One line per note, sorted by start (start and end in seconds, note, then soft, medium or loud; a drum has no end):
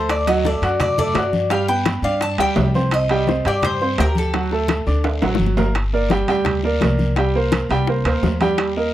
0.00 0.56 D2 medium
0.00 0.21 A3 medium
0.00 0.21 A4 medium
0.00 0.10 C5 medium
0.00 0.21 A5 medium
0.09 0.27 D5 medium
0.09 high bongo medium
0.09 high conga soft
0.09 high timbale medium
0.09 long guiro medium
0.27 0.42 F#3 medium
0.27 0.42 F#4 medium
0.27 0.45 D#5 medium
0.27 0.42 F#5 medium
0.27 high bongo soft
0.27 high conga soft
0.27 high timbale medium
0.45 0.59 A3 medium
0.45 0.60 A4 medium
0.45 0.80 D5 medium
0.45 0.60 A5 medium
0.45 high bongo medium
0.45 high conga medium
0.45 low timbale medium
0.45 short guiro medium
0.61 1.11 F#2 medium
0.61 0.92 F#4 medium
0.61 0.92 F#5 medium
0.61 0.92 F#6 medium
0.61 high bongo soft
0.61 high conga soft
0.61 high timbale medium
0.61 short guiro medium
0.80 0.97 D5 medium
0.80 high bongo medium
0.80 high conga soft
0.80 low conga medium
0.80 high timbale medium
0.80 long guiro medium
0.97 1.12 A3 medium
0.97 1.13 A4 medium
0.97 1.51 D5 medium
0.97 1.13 A5 medium
0.97 high bongo soft
0.97 high conga soft
0.97 low conga medium
1.14 1.98 G2 medium
1.14 1.45 F#4 medium
1.14 1.45 F#5 medium
1.14 1.45 F#6 medium
1.14 high bongo soft
1.14 low bongo medium
1.14 high conga soft
1.14 high timbale medium
1.14 low timbale medium
1.14 short guiro medium
1.33 high conga medium
1.33 short guiro medium
1.50 1.65 G3 medium
1.50 1.66 G4 medium
1.50 1.68 F5 medium
1.50 1.66 G5 medium
1.50 high bongo medium
1.50 high conga soft
1.50 high timbale medium
1.50 long guiro medium
1.68 1.97 B3 medium
1.68 1.98 B4 medium
1.68 2.04 G5 loud
1.68 1.98 B5 medium
1.68 high bongo soft
1.68 high conga soft
1.85 high bongo medium
1.85 high conga medium
1.85 high timbale medium
1.85 low timbale medium
1.85 short guiro medium
2.02 2.36 G2 medium
2.02 2.33 D4 medium
2.02 2.33 D5 medium
2.02 2.20 F5 medium
2.02 2.33 D6 medium
2.02 high bongo soft
2.02 high conga soft
2.02 short guiro medium
2.21 2.38 A5 loud
2.21 high bongo medium
2.21 high conga soft
2.21 high timbale medium
2.21 long guiro medium
2.38 2.55 D2 medium
2.38 2.68 G3 medium
2.38 2.68 G4 medium
2.38 2.68 G5 medium
2.38 2.73 G5 loud
2.38 high bongo soft
2.38 high conga soft
2.38 high timbale medium
2.56 3.40 C2 medium
2.56 high bongo soft
2.56 low bongo medium
2.56 high conga medium
2.56 low timbale medium
2.56 short guiro medium
2.74 3.04 C4 medium
2.74 3.04 C5 medium
2.74 3.04 C6 medium
2.74 high conga medium
2.74 short guiro medium
2.91 3.47 D#5 medium
2.91 high bongo medium
2.91 high conga soft
2.91 high timbale medium
2.91 long guiro medium
3.09 3.25 G3 medium
3.09 3.25 G4 medium
3.09 3.25 G5 medium
3.09 high bongo soft
3.09 high conga soft
3.09 high timbale medium
3.27 3.42 C4 medium
3.27 3.43 C5 medium
3.27 3.43 C6 medium
3.27 high bongo medium
3.27 high conga medium
3.27 low timbale medium
3.27 short guiro medium
3.45 3.95 G2 medium
3.45 3.75 G4 medium
3.45 3.63 D5 medium
3.45 3.75 G5 medium
3.45 3.75 G6 medium
3.45 high bongo soft
3.45 high conga soft
3.45 high timbale medium
3.45 short guiro medium
3.62 3.97 C5 medium
3.62 high bongo medium
3.62 high conga soft
3.62 low conga medium
3.62 high timbale medium
3.62 long guiro medium
3.80 3.96 C4 medium
3.80 3.96 C5 medium
3.80 3.96 C6 medium
3.80 high bongo soft
3.80 high conga soft
3.98 4.81 D2 medium
3.98 4.28 G4 medium
3.98 4.18 A#4 medium
3.98 4.28 G5 medium
3.98 4.28 G6 medium
3.98 high bongo soft
3.98 low bongo medium
3.98 high conga soft
3.98 high timbale medium
3.98 low timbale medium
3.98 short guiro medium
4.15 5.37 A4 medium
4.15 high conga medium
4.15 short guiro medium
4.34 4.49 F#3 medium
4.34 4.49 F#4 medium
4.34 4.49 F#5 medium
4.34 high bongo medium
4.34 high conga soft
4.34 high timbale medium
4.34 long guiro medium
4.51 4.81 A3 medium
4.51 4.81 A4 medium
4.51 4.81 A5 medium
4.51 high bongo soft
4.51 high conga soft
4.68 high bongo medium
4.68 high conga medium
4.68 high timbale medium
4.68 low timbale medium
4.68 short guiro medium
4.86 5.20 D2 medium
4.86 5.16 D4 medium
4.86 5.16 D5 medium
4.86 5.16 D6 medium
4.86 high bongo soft
4.86 high conga soft
4.86 short guiro medium
5.04 high bongo medium
5.04 high conga soft
5.04 high timbale medium
5.04 long guiro medium
5.22 5.39 A1 medium
5.22 5.51 F#3 medium
5.22 5.51 F#4 medium
5.22 5.52 F#5 medium
5.22 high bongo medium
5.22 high conga soft
5.22 high timbale medium
5.35 high bongo loud
5.39 6.22 G1 medium
5.39 high conga medium
5.39 short guiro medium
5.46 low bongo medium
5.57 5.72 A#3 medium
5.57 5.73 A#4 medium
5.57 5.73 A#5 medium
5.57 low bongo medium
5.57 high conga medium
5.57 low timbale medium
5.57 short guiro medium
5.75 high bongo medium
5.75 high timbale medium
5.75 long guiro medium
5.93 6.08 A#3 medium
5.93 6.08 A#4 medium
5.93 6.08 D5 medium
5.93 high conga soft
6.10 6.25 G3 medium
6.10 6.26 G4 medium
6.10 6.26 G5 medium
6.10 high bongo medium
6.10 high conga medium
6.10 high timbale medium
6.10 short guiro medium
6.28 6.78 D2 medium
6.28 6.57 G3 medium
6.28 6.57 G4 medium
6.28 6.58 G5 medium
6.28 high bongo soft
6.28 high conga soft
6.28 high timbale medium
6.28 short guiro medium
6.45 high bongo medium
6.45 high conga soft
6.45 low conga medium
6.45 high timbale medium
6.45 long guiro medium
6.63 6.79 A#3 medium
6.63 6.79 A#4 medium
6.63 6.79 D5 medium
6.63 high bongo soft
6.63 high conga soft
6.81 7.64 C2 medium
6.81 7.11 A#3 medium
6.81 7.11 A#4 medium
6.81 7.11 D5 medium
6.81 high bongo soft
6.81 low bongo medium
6.81 high conga medium
6.81 high timbale medium
6.81 low timbale medium
6.81 short guiro medium
6.99 high bongo soft
6.99 high conga medium
6.99 short guiro medium
7.16 7.32 G3 medium
7.16 7.32 G4 medium
7.16 7.32 G5 medium
7.16 high bongo medium
7.16 high conga soft
7.16 high timbale medium
7.16 long guiro medium
7.35 7.64 A#3 medium
7.35 7.64 A#4 medium
7.35 7.64 C5 medium
7.35 high conga soft
7.52 high bongo medium
7.52 high conga loud
7.52 high timbale medium
7.52 short guiro medium
7.69 8.02 C2 medium
7.69 7.85 G3 medium
7.69 7.85 G4 medium
7.69 7.85 G5 medium
7.69 high bongo soft
7.69 high conga soft
7.69 high timbale medium
7.69 short guiro medium
7.87 8.03 A#3 medium
7.87 8.03 A#4 medium
7.87 8.03 C5 medium
7.87 high bongo medium
7.87 high conga soft
7.87 long guiro medium
8.04 8.21 D2 medium
8.04 8.35 A#3 medium
8.04 8.35 A#4 medium
8.04 8.35 C5 medium
8.04 high bongo soft
8.04 high conga soft
8.04 high timbale loud
8.22 8.94 D#2 medium
8.22 high bongo soft
8.22 low bongo medium
8.22 high conga medium
8.22 low timbale medium
8.22 short guiro medium
8.41 8.70 G3 medium
8.41 8.70 G4 medium
8.41 8.70 G5 medium
8.41 high bongo soft
8.41 high conga medium
8.41 high timbale medium
8.41 short guiro medium
8.58 high bongo medium
8.58 high conga soft
8.58 high timbale medium
8.58 long guiro medium
8.77 8.91 A#3 medium
8.77 8.91 A#4 medium
8.77 8.91 D#5 medium
8.77 high conga soft